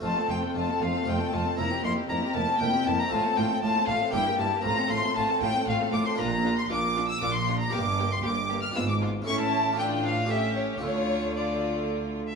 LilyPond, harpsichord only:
<<
  \new Staff \with { instrumentName = "Harpsichord" } { \time 3/4 \key f \major \tempo 4 = 117 <a c' f'>2 <a c' f'>4 | <c' e'>2. | <a c' f'>2 <bes e' g'>4 | <c' f'>2. |
\key d \minor <d' f' bes'>2. | <d' g' bes'>2 <d' eis' b'>4 | <cis' e' a'>4 <d' f' a'>4 <cis' g' a'>4 | <d' f' a'>2. | }
  \new Staff \with { instrumentName = "Harpsichord" } { \clef bass \time 3/4 \key f \major f,8 f,8 f,8 f,8 f,8 f,8 | f,8 f,8 f,8 f,8 f,8 f,8 | a,8 a,8 a,8 a,8 g,8 g,8 | a,8 a,8 a,8 a,8 a,8 a,8 |
\key d \minor bes,4 bes,4 bes,4 | g,4 g,4 gis,4 | a,2. | d2~ d8 r8 | }
>>